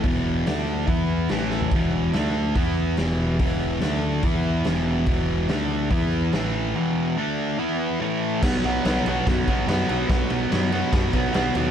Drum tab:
CC |----------------|----------------|----------------|----------------|
RD |----------------|----------------|----------------|----------------|
HH |o---o---o---o---|o---o---o---o---|o---o---o---o---|o---o---o---o---|
SD |----o-------o-o-|----o-------o---|----o-------o---|----o-------o---|
FT |---------------o|----------------|----------------|----------------|
BD |o-------o-------|o-------o-------|o-------o-------|o-------o-------|

CC |----------------|x---------------|----------------|
RD |----------------|--x-x-x-x-x-x-x-|x-x-x-x-x-x-x-x-|
HH |----------------|----------------|----------------|
SD |----------------|o---o---o---o---|o---o---o---o---|
FT |----------------|----------------|----------------|
BD |----------------|o-------o-o-----|o-------o-o-----|